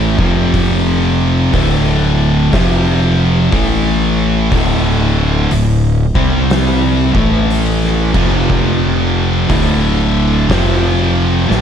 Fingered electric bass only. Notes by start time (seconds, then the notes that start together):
Already playing: A1
0.18 F1
1.54 D1
2.53 F1
3.52 A1
4.51 D1
5.51 D1
6.15 C2
7.15 A1
8.15 F1
9.50 D1
10.50 F1
11.50 A1